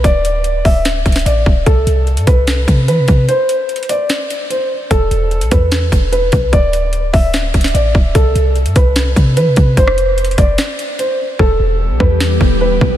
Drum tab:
HH |x-----x-----x-----o-----x-----x-x-x-x-----------|x-----x-----x--x--x-----x-----x-----x-----x-----|x-----x-----x-x-x-x-----x-----x-----x-----------|x-----x-----x--x--x-----x-----x-----x-----x-----|
SD |------------------------o--------o--------------|------------------------o-----------------------|------------------------o-----------------------|------------------------o-----------------------|
BD |o-----------------o-----------o-----------o-----|o-----------------o-----------o-----------o-----|------------------------------------------------|o-----------------o-----------o-----------o-----|

HH |x-----x-----x-----o-----x-----x-x-x-x-----------|x-----x-----x--x--x-----x-----x-----x-----x-----|x-----x-----x-x-x-x-----x-----x-----x-----------|------------------------------------------------|
SD |------------------------o--------o--------------|------------------------o-----------------------|---r--------------------o-----------------------|------------------------o-----------------------|
BD |o-----------------o-----------o-----------o-----|o-----------------o-----------o-----------o-----|o-----------------o-----------------------------|o-----------------o-----------o-----------o-----|